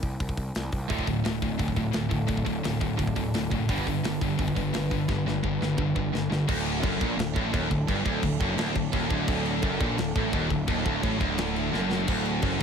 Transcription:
0.03 picked electric bass C2, kick, open hi-hat
0.20 picked electric bass C2, kick, open hi-hat
0.29 kick
0.37 picked electric bass C2, kick, open hi-hat
0.55 picked electric bass C2, snare, open hi-hat
0.72 picked electric bass C2, kick, open hi-hat
0.88 picked electric bass D1, distorted electric guitar D2 A2 D3, string section F#3 D4 A4, kick, open hi-hat
0.99 kick
1.07 picked electric bass D1, distorted electric guitar D2 A2, kick, open hi-hat
1.24 picked electric bass D1, distorted electric guitar D2 A2, snare, open hi-hat
1.42 picked electric bass D1, distorted electric guitar D2 A2, kick, open hi-hat
1.58 picked electric bass D1, distorted electric guitar D2 A2, kick, open hi-hat
1.68 kick
1.76 picked electric bass D1, distorted electric guitar D2 A2, kick, open hi-hat
1.92 picked electric bass D1, distorted electric guitar D2 A2, snare, open hi-hat
2.09 picked electric bass D1, distorted electric guitar D2 A2, kick, open hi-hat
2.27 picked electric bass D1, distorted electric guitar D2 A2, kick, open hi-hat
2.37 kick
2.45 picked electric bass D1, distorted electric guitar D2 A2, kick, open hi-hat
2.63 picked electric bass D1, distorted electric guitar D2 A2, snare, open hi-hat
2.80 picked electric bass D1, distorted electric guitar D2 A2, kick, open hi-hat
2.97 picked electric bass D1, distorted electric guitar D2 A2, kick, open hi-hat
3.07 kick
3.16 picked electric bass D1, distorted electric guitar D2 A2, kick, open hi-hat
3.34 picked electric bass D1, distorted electric guitar D2 A2, snare, open hi-hat
3.51 picked electric bass F#1, distorted electric guitar D2 A2, kick, open hi-hat
3.69 picked electric bass G1, distorted electric guitar G2 D3 G3, string section G3 B4, kick, open hi-hat
3.78 kick
3.87 picked electric bass G1, distorted electric guitar G2 D3, kick, open hi-hat
4.03 picked electric bass G1, distorted electric guitar G2 D3, snare, open hi-hat
4.21 picked electric bass G1, distorted electric guitar G2 D3, kick, open hi-hat
4.38 picked electric bass G1, distorted electric guitar G2 D3, kick, open hi-hat
4.48 kick
4.56 picked electric bass G1, distorted electric guitar G2 D3, kick, open hi-hat
4.73 picked electric bass G1, distorted electric guitar G2 D3, snare, open hi-hat
4.91 picked electric bass G1, distorted electric guitar G2 D3, kick, open hi-hat
5.08 picked electric bass G1, distorted electric guitar G2 D3, kick, snare
5.25 picked electric bass G1, distorted electric guitar G2 D3, snare
5.43 picked electric bass G1, distorted electric guitar G2 D3, kick
5.61 picked electric bass G1, distorted electric guitar G2 D3, snare
5.78 picked electric bass G1, distorted electric guitar G2 D3, kick, mid tom
5.96 picked electric bass G1, distorted electric guitar G2 D3, kick
6.13 picked electric bass G1, distorted electric guitar G2 D3, snare
6.30 picked electric bass G1, distorted electric guitar G2 D3, snare
6.48 picked electric bass D1, distorted electric guitar D2, string section F#3 D4 A4, kick, crash
6.66 crash
6.83 picked electric bass F#1, distorted electric guitar F#2, kick, crash
7.01 picked electric bass A#1, distorted electric guitar A#2, kick, crash
7.18 picked electric bass D1, distorted electric guitar D2, snare, crash
7.36 picked electric bass A1, distorted electric guitar A2, kick, crash
7.53 picked electric bass D#1, distorted electric guitar D#2, kick, crash
7.71 picked electric bass D1, distorted electric guitar D2, kick, crash
7.88 picked electric bass G1, distorted electric guitar G2, kick, crash
8.06 picked electric bass D1, distorted electric guitar D2, kick, crash
8.23 picked electric bass D1, distorted electric guitar D2, kick, crash
8.40 picked electric bass F#1, distorted electric guitar F#2, kick, crash
8.58 picked electric bass D1, distorted electric guitar D2, snare, crash
8.76 picked electric bass D1, distorted electric guitar D2, kick, crash
8.93 picked electric bass D#1, distorted electric guitar D#2, kick, crash
9.10 picked electric bass D1, distorted electric guitar D2, kick, crash
9.28 picked electric bass D1, distorted electric guitar D2, kick, crash
9.45 crash
9.62 picked electric bass F#1, distorted electric guitar F#2, kick, crash
9.81 picked electric bass A#1, distorted electric guitar A#2, kick, crash
9.98 picked electric bass D1, distorted electric guitar D2, snare, crash
10.16 picked electric bass A1, distorted electric guitar A2, kick, crash
10.33 picked electric bass D#1, distorted electric guitar D#2, kick, crash
10.50 picked electric bass D1, distorted electric guitar D2, kick, crash
10.67 picked electric bass D#1, distorted electric guitar D#2, kick, crash
10.85 picked electric bass D1, distorted electric guitar D2, kick, crash
11.03 picked electric bass A1, distorted electric guitar A2, kick, crash
11.20 picked electric bass D1, distorted electric guitar D2, kick, crash
11.38 snare, crash
11.56 crash
11.73 picked electric bass F#1, distorted electric guitar F#2, snare
11.91 snare
12.08 picked electric bass D1, distorted electric guitar D2, string section C4, kick, splash, crash
12.25 crash
12.42 picked electric bass F#1, distorted electric guitar F#2, kick, crash

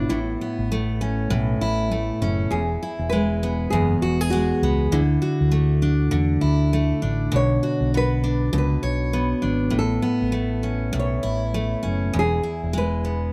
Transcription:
Already playing: steel-string acoustic guitar B3 D4 F#4 C#5, nylon-string guitar E4
0.09 fingered electric bass A1, steel-string acoustic guitar A2, nylon-string guitar E4
0.41 steel-string acoustic guitar B3
0.59 fingered electric bass A1
0.72 steel-string acoustic guitar A3
1.01 steel-string acoustic guitar C#4
1.30 fingered electric bass B1, steel-string acoustic guitar A2
1.61 fingered electric bass A1, steel-string acoustic guitar E4
1.91 steel-string acoustic guitar A3
2.21 fingered electric bass F#1, steel-string acoustic guitar C#4
2.51 fingered electric bass E1, steel-string acoustic guitar E2, nylon-string guitar G#4
2.83 steel-string acoustic guitar E4
2.99 fingered electric bass E1
3.10 steel-string acoustic guitar G#3, nylon-string guitar B4
3.43 steel-string acoustic guitar B3
3.70 fingered electric bass F#1, steel-string acoustic guitar E2, nylon-string guitar G#4
4.02 fingered electric bass E1, steel-string acoustic guitar F#4
4.21 steel-string acoustic guitar G#4
4.30 steel-string acoustic guitar G#3, nylon-string guitar F#4
4.62 fingered electric bass C#2, steel-string acoustic guitar B3
4.92 fingered electric bass D2, steel-string acoustic guitar D3, nylon-string guitar E4
5.22 steel-string acoustic guitar F#4
5.41 fingered electric bass D2
5.52 steel-string acoustic guitar A3
5.82 steel-string acoustic guitar D4
6.11 fingered electric bass E2, steel-string acoustic guitar D3
6.41 fingered electric bass D2, steel-string acoustic guitar E4
6.73 steel-string acoustic guitar A3
7.02 fingered electric bass A1, steel-string acoustic guitar D4
7.32 fingered electric bass B1, steel-string acoustic guitar B2
7.36 nylon-string guitar C#5
7.63 steel-string acoustic guitar F#4
7.81 fingered electric bass B1
7.94 steel-string acoustic guitar B3, nylon-string guitar B4
8.24 steel-string acoustic guitar D4
8.53 fingered electric bass C#2, steel-string acoustic guitar B2
8.58 nylon-string guitar B4
8.83 fingered electric bass B1, steel-string acoustic guitar C#5
9.13 steel-string acoustic guitar B3
9.42 fingered electric bass G#1, steel-string acoustic guitar D4
9.70 fingered electric bass A1, steel-string acoustic guitar A2
9.79 nylon-string guitar A4
10.02 steel-string acoustic guitar B3
10.22 fingered electric bass A1
10.32 steel-string acoustic guitar A3
10.63 steel-string acoustic guitar C#4
10.93 fingered electric bass B1, steel-string acoustic guitar A2
10.99 nylon-string guitar C#5
11.23 fingered electric bass A1, steel-string acoustic guitar E4
11.54 steel-string acoustic guitar A3
11.83 fingered electric bass F#1, steel-string acoustic guitar C#4
12.13 fingered electric bass E1, steel-string acoustic guitar E2
12.19 nylon-string guitar G#4
12.43 steel-string acoustic guitar E4
12.64 fingered electric bass E1
12.73 steel-string acoustic guitar G#3
12.78 nylon-string guitar B4
13.05 steel-string acoustic guitar B3

